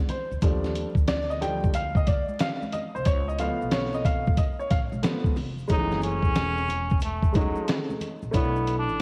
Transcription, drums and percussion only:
0.09 closed hi-hat, low conga, shaker
0.32 shaker
0.42 kick, closed hi-hat, shaker
0.64 snare, shaker
0.75 closed hi-hat, shaker
0.95 kick, shaker
1.08 snare, closed hi-hat, shaker
1.30 shaker
1.42 closed hi-hat, low conga, shaker
1.64 kick, high conga, shaker
1.74 closed hi-hat, shaker
1.95 kick, shaker
2.07 kick, closed hi-hat, high conga, shaker
2.28 high conga, shaker
2.39 snare, closed hi-hat, shaker
2.62 high conga, shaker
2.72 closed hi-hat, low conga, shaker
2.96 shaker
3.05 kick, closed hi-hat, shaker
3.29 shaker
3.39 closed hi-hat, shaker
3.62 shaker
3.71 snare, closed hi-hat, shaker
3.94 shaker
4.05 kick, closed hi-hat, low conga, shaker
4.26 kick, high conga, shaker
4.37 kick, closed hi-hat, shaker
4.60 shaker
4.70 kick, snare, closed hi-hat, high conga, shaker
4.93 high conga, shaker
5.03 snare, closed hi-hat, shaker
5.24 kick, high conga, shaker
5.36 open hi-hat, low conga, shaker
5.59 shaker
5.68 kick, closed hi-hat, shaker
5.91 snare, shaker
6.02 closed hi-hat, shaker
6.22 kick, shaker
6.35 snare, closed hi-hat, shaker
6.57 shaker
6.69 closed hi-hat, low conga, shaker
6.90 kick, high conga, shaker
7.00 closed hi-hat, shaker
7.23 kick, shaker
7.34 kick, closed hi-hat, high conga, shaker
7.55 high conga, shaker
7.68 snare, closed hi-hat, shaker
7.90 high conga, shaker
8.01 closed hi-hat, low conga, shaker
8.22 shaker
8.33 kick, closed hi-hat, shaker
8.56 shaker
8.67 closed hi-hat, shaker
8.89 shaker

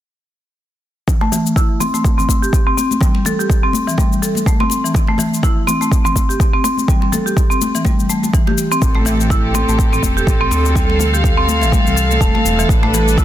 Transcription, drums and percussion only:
1.08 kick, low conga, shaker
1.21 muted conga
1.32 high conga, low conga, shaker
1.46 shaker
1.56 kick, muted conga, shaker
1.80 high conga, low conga, shaker
1.94 muted conga, shaker
2.04 kick, shaker
2.18 low conga, shaker
2.29 kick, muted conga, high conga, shaker
2.43 shaker
2.53 kick, shaker
2.77 muted conga, high conga, shaker
2.91 high conga, shaker
3.01 kick, low conga, shaker
3.15 muted conga
3.25 high conga, low conga, shaker
3.40 shaker
3.50 kick, muted conga, shaker
3.73 high conga, shaker
3.88 muted conga, shaker
3.98 kick, high conga, shaker
4.13 shaker
4.23 muted conga, shaker
4.35 high conga, shaker
4.46 kick, shaker
4.60 high conga
4.70 muted conga, shaker
4.86 shaker
4.94 kick, low conga, shaker
5.07 muted conga
5.18 high conga, low conga, shaker
5.34 shaker
5.43 kick, muted conga, shaker
5.67 high conga, low conga, shaker
5.81 muted conga, shaker
5.92 kick, shaker
6.05 low conga, shaker
6.15 kick, muted conga, high conga, shaker
6.30 shaker
6.40 kick, shaker
6.64 muted conga, high conga, shaker
6.77 high conga, shaker
6.88 kick, low conga, shaker
7.02 muted conga
7.13 high conga, low conga, shaker
7.27 shaker
7.37 kick, muted conga, shaker
7.51 shaker
7.62 high conga, shaker
7.75 muted conga, shaker
7.85 kick, high conga, shaker
8.00 shaker
8.09 muted conga, shaker
8.23 high conga, shaker
8.33 kick, shaker
8.47 high conga
8.58 muted conga, shaker
8.72 shaker
8.82 kick, low conga, shaker
8.95 muted conga
9.05 high conga, low conga, shaker
9.21 shaker
9.30 kick, muted conga, shaker
9.54 high conga, low conga, shaker
9.69 muted conga, shaker
9.79 kick, shaker
9.93 low conga, shaker
10.03 kick, muted conga, high conga, shaker
10.17 shaker
10.27 kick, shaker
10.51 muted conga, high conga, shaker
10.66 high conga, shaker
10.75 kick, low conga, shaker
10.90 muted conga
10.99 high conga, low conga, shaker
11.14 shaker
11.24 kick, muted conga, shaker
11.49 high conga, shaker
11.61 muted conga, shaker
11.72 kick, high conga, shaker
11.87 shaker
11.97 muted conga, shaker
12.11 high conga, shaker
12.21 kick, shaker
12.35 high conga
12.46 muted conga, shaker
12.59 shaker
12.69 kick, low conga, shaker
12.83 muted conga
12.94 high conga, low conga, shaker
13.08 shaker
13.18 kick, muted conga, shaker

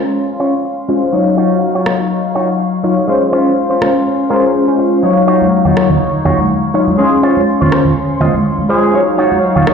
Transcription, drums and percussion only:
1.86 cross-stick
3.82 cross-stick
5.04 tambourine
5.17 tambourine
5.27 tambourine
5.41 tambourine, high conga
5.51 tambourine
5.65 tambourine, low conga
5.77 cross-stick
5.90 tambourine, low conga
6.01 tambourine
6.14 tambourine
6.25 tambourine, low conga
6.39 tambourine, high conga
6.49 tambourine
6.63 tambourine
6.74 tambourine
6.87 tambourine, high conga
6.99 tambourine
7.12 tambourine
7.23 tambourine
7.37 tambourine, high conga
7.48 tambourine
7.61 tambourine, low conga
7.72 cross-stick
7.85 tambourine, low conga
7.96 tambourine
8.09 tambourine
8.21 tambourine, high conga, low conga
8.34 tambourine, high conga
8.45 tambourine
8.58 tambourine, high conga
8.69 tambourine
8.82 tambourine
8.94 tambourine
9.07 tambourine
9.18 tambourine
9.31 tambourine, high conga
9.42 tambourine
9.56 tambourine, low conga
9.67 cross-stick, tambourine

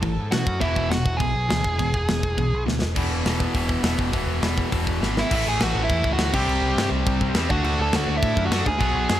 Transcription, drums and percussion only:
0.02 kick, crash
0.32 snare, crash
0.47 kick
0.61 kick, crash
0.76 kick
0.91 snare, crash
1.06 kick
1.20 kick, crash
1.50 snare, crash
1.64 kick
1.79 kick, crash
1.94 kick
2.08 snare, crash
2.23 kick
2.38 kick, crash
2.68 snare
2.82 snare
2.96 kick, crash
3.26 snare, open hi-hat
3.40 kick
3.55 kick, open hi-hat
3.69 kick
3.84 snare, open hi-hat
3.99 kick
4.13 kick, open hi-hat
4.43 snare, open hi-hat
4.58 kick
4.72 kick, open hi-hat
4.87 kick
5.03 snare
5.17 snare
5.31 kick, crash
5.60 snare, crash
5.90 kick, crash
6.04 kick
6.18 snare, crash
6.33 kick, crash
6.49 crash
6.78 snare, crash
7.06 kick, crash
7.21 kick
7.35 snare, crash
7.50 kick
7.64 crash
7.93 snare, crash
8.23 kick, crash
8.37 kick
8.52 snare, crash
8.66 kick
8.80 kick, crash
9.09 snare, crash

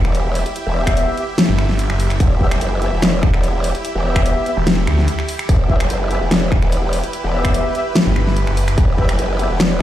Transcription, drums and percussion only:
0.05 finger snap
0.15 closed hi-hat
0.35 open hi-hat
0.46 closed hi-hat
0.56 closed hi-hat
0.87 finger snap, kick, closed hi-hat
0.97 closed hi-hat
1.17 closed hi-hat
1.38 snare, closed hi-hat
1.59 finger snap
1.69 snare
1.79 closed hi-hat
1.90 finger snap
2.00 open hi-hat
2.10 finger snap, closed hi-hat
2.20 kick, closed hi-hat
2.41 kick
2.51 finger snap, closed hi-hat
2.61 closed hi-hat
2.82 closed hi-hat
3.02 finger snap, snare, closed hi-hat
3.23 finger snap, kick
3.34 finger snap
3.44 closed hi-hat
3.64 open hi-hat
3.75 closed hi-hat
3.85 closed hi-hat
4.16 finger snap, kick, closed hi-hat
4.26 closed hi-hat
4.46 closed hi-hat
4.67 snare, closed hi-hat
4.87 finger snap
4.98 snare
5.08 closed hi-hat
5.19 finger snap
5.29 open hi-hat
5.39 finger snap, closed hi-hat
5.49 kick, closed hi-hat
5.70 kick
5.80 finger snap, closed hi-hat
5.90 closed hi-hat
6.11 closed hi-hat
6.31 finger snap, snare, closed hi-hat
6.52 finger snap, kick
6.62 finger snap
6.72 closed hi-hat
6.93 open hi-hat
7.04 closed hi-hat
7.13 closed hi-hat
7.45 finger snap, kick, closed hi-hat
7.54 closed hi-hat
7.75 closed hi-hat
7.96 snare, closed hi-hat
8.16 finger snap
8.27 snare
8.37 closed hi-hat
8.47 finger snap
8.57 open hi-hat
8.68 finger snap, closed hi-hat
8.78 kick, closed hi-hat
8.98 kick
9.09 finger snap, closed hi-hat
9.19 closed hi-hat
9.39 closed hi-hat
9.60 finger snap, snare, closed hi-hat

